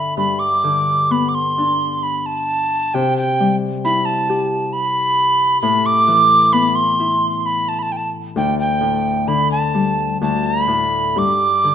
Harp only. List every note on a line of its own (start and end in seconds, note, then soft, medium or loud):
0.00 0.16 G2 soft
0.00 0.22 D3 soft
0.00 1.10 B3 soft
0.00 1.53 D4 soft
0.00 1.42 E5 soft
0.00 0.78 G5 soft
0.17 2.99 G2 soft
0.64 2.99 D3 soft
1.11 3.00 B3 soft
1.58 4.38 D4 soft
2.94 5.67 C3 medium
3.40 5.67 G3 soft
3.85 6.46 E4 soft
4.29 6.65 G4 soft
5.63 8.41 A2 medium
6.08 8.41 E3 soft
6.53 9.64 B3 soft
7.00 9.61 E4 soft
8.36 10.20 D2 medium
8.81 9.32 A2 soft
9.28 10.26 D3 soft
9.74 10.26 G3 soft
10.21 11.21 D2 soft
10.68 11.21 A2 soft
11.16 11.75 G2 soft
11.64 11.75 D3 soft